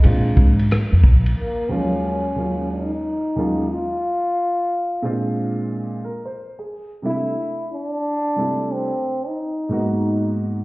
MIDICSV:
0, 0, Header, 1, 5, 480
1, 0, Start_track
1, 0, Tempo, 666667
1, 991, Time_signature, 4, 2, 24, 8
1, 7664, End_track
2, 0, Start_track
2, 0, Title_t, "Trombone"
2, 0, Program_c, 0, 57
2, 1005, Note_on_c, 0, 58, 84
2, 1246, Note_on_c, 0, 61, 96
2, 1257, Note_off_c, 0, 58, 0
2, 1953, Note_off_c, 0, 61, 0
2, 1957, Note_on_c, 0, 63, 91
2, 2649, Note_on_c, 0, 64, 76
2, 2660, Note_off_c, 0, 63, 0
2, 2677, Note_on_c, 0, 65, 116
2, 2688, Note_off_c, 0, 64, 0
2, 4114, Note_off_c, 0, 65, 0
2, 5085, Note_on_c, 0, 64, 107
2, 5529, Note_off_c, 0, 64, 0
2, 5565, Note_on_c, 0, 62, 120
2, 6284, Note_on_c, 0, 60, 96
2, 6295, Note_off_c, 0, 62, 0
2, 6675, Note_on_c, 0, 63, 98
2, 6686, Note_off_c, 0, 60, 0
2, 7631, Note_off_c, 0, 63, 0
2, 7664, End_track
3, 0, Start_track
3, 0, Title_t, "Upright piano"
3, 0, Program_c, 1, 0
3, 0, Note_on_c, 1, 75, 55
3, 18, Note_on_c, 1, 56, 76
3, 25, Note_on_c, 1, 60, 70
3, 33, Note_on_c, 1, 62, 69
3, 40, Note_on_c, 1, 65, 78
3, 174, Note_off_c, 1, 75, 0
3, 327, Note_off_c, 1, 56, 0
3, 330, Note_off_c, 1, 60, 0
3, 334, Note_off_c, 1, 62, 0
3, 337, Note_off_c, 1, 65, 0
3, 1215, Note_on_c, 1, 39, 70
3, 1220, Note_on_c, 1, 53, 50
3, 1225, Note_on_c, 1, 56, 63
3, 1231, Note_on_c, 1, 61, 58
3, 1237, Note_on_c, 1, 65, 81
3, 1266, Note_on_c, 1, 54, 65
3, 1286, Note_off_c, 1, 53, 0
3, 1587, Note_off_c, 1, 39, 0
3, 1592, Note_off_c, 1, 56, 0
3, 1595, Note_off_c, 1, 61, 0
3, 1598, Note_off_c, 1, 65, 0
3, 1613, Note_off_c, 1, 54, 0
3, 1697, Note_on_c, 1, 39, 58
3, 1704, Note_on_c, 1, 54, 48
3, 1708, Note_on_c, 1, 56, 51
3, 1714, Note_on_c, 1, 61, 49
3, 1719, Note_on_c, 1, 65, 62
3, 2068, Note_off_c, 1, 39, 0
3, 2072, Note_off_c, 1, 54, 0
3, 2074, Note_off_c, 1, 56, 0
3, 2077, Note_off_c, 1, 61, 0
3, 2080, Note_off_c, 1, 65, 0
3, 2419, Note_on_c, 1, 39, 68
3, 2425, Note_on_c, 1, 54, 60
3, 2429, Note_on_c, 1, 56, 61
3, 2436, Note_on_c, 1, 61, 59
3, 2441, Note_on_c, 1, 65, 70
3, 2614, Note_off_c, 1, 39, 0
3, 2617, Note_off_c, 1, 54, 0
3, 2619, Note_off_c, 1, 56, 0
3, 2623, Note_off_c, 1, 61, 0
3, 2625, Note_off_c, 1, 65, 0
3, 3617, Note_on_c, 1, 46, 79
3, 3622, Note_on_c, 1, 56, 77
3, 3627, Note_on_c, 1, 60, 73
3, 3633, Note_on_c, 1, 62, 68
3, 3638, Note_on_c, 1, 65, 85
3, 4310, Note_off_c, 1, 46, 0
3, 4312, Note_off_c, 1, 56, 0
3, 4315, Note_off_c, 1, 60, 0
3, 4318, Note_off_c, 1, 62, 0
3, 4321, Note_off_c, 1, 65, 0
3, 4351, Note_on_c, 1, 70, 67
3, 4499, Note_off_c, 1, 70, 0
3, 4504, Note_on_c, 1, 72, 68
3, 4733, Note_off_c, 1, 72, 0
3, 4744, Note_on_c, 1, 68, 58
3, 4973, Note_off_c, 1, 68, 0
3, 5057, Note_on_c, 1, 48, 73
3, 5063, Note_on_c, 1, 55, 59
3, 5069, Note_on_c, 1, 57, 67
3, 5074, Note_on_c, 1, 62, 65
3, 5080, Note_on_c, 1, 64, 80
3, 5253, Note_off_c, 1, 48, 0
3, 5256, Note_off_c, 1, 55, 0
3, 5259, Note_off_c, 1, 57, 0
3, 5262, Note_off_c, 1, 62, 0
3, 5265, Note_off_c, 1, 64, 0
3, 6017, Note_on_c, 1, 48, 70
3, 6023, Note_on_c, 1, 55, 61
3, 6029, Note_on_c, 1, 57, 61
3, 6033, Note_on_c, 1, 62, 61
3, 6038, Note_on_c, 1, 64, 76
3, 6388, Note_off_c, 1, 48, 0
3, 6391, Note_off_c, 1, 55, 0
3, 6394, Note_off_c, 1, 57, 0
3, 6396, Note_off_c, 1, 62, 0
3, 6399, Note_off_c, 1, 64, 0
3, 6977, Note_on_c, 1, 44, 71
3, 6983, Note_on_c, 1, 58, 66
3, 6987, Note_on_c, 1, 59, 63
3, 6995, Note_on_c, 1, 63, 67
3, 6999, Note_on_c, 1, 66, 78
3, 7664, Note_off_c, 1, 44, 0
3, 7664, Note_off_c, 1, 58, 0
3, 7664, Note_off_c, 1, 59, 0
3, 7664, Note_off_c, 1, 63, 0
3, 7664, Note_off_c, 1, 66, 0
3, 7664, End_track
4, 0, Start_track
4, 0, Title_t, "Upright bass"
4, 0, Program_c, 2, 32
4, 33, Note_on_c, 2, 46, 85
4, 238, Note_off_c, 2, 46, 0
4, 268, Note_on_c, 2, 44, 87
4, 474, Note_off_c, 2, 44, 0
4, 666, Note_on_c, 2, 41, 84
4, 746, Note_on_c, 2, 34, 87
4, 756, Note_off_c, 2, 41, 0
4, 953, Note_off_c, 2, 34, 0
4, 7664, End_track
5, 0, Start_track
5, 0, Title_t, "Drums"
5, 26, Note_on_c, 9, 51, 78
5, 98, Note_off_c, 9, 51, 0
5, 266, Note_on_c, 9, 36, 89
5, 338, Note_off_c, 9, 36, 0
5, 427, Note_on_c, 9, 51, 57
5, 499, Note_off_c, 9, 51, 0
5, 513, Note_on_c, 9, 44, 56
5, 513, Note_on_c, 9, 51, 80
5, 519, Note_on_c, 9, 37, 96
5, 585, Note_off_c, 9, 44, 0
5, 585, Note_off_c, 9, 51, 0
5, 591, Note_off_c, 9, 37, 0
5, 746, Note_on_c, 9, 36, 91
5, 818, Note_off_c, 9, 36, 0
5, 908, Note_on_c, 9, 51, 58
5, 980, Note_off_c, 9, 51, 0
5, 7664, End_track
0, 0, End_of_file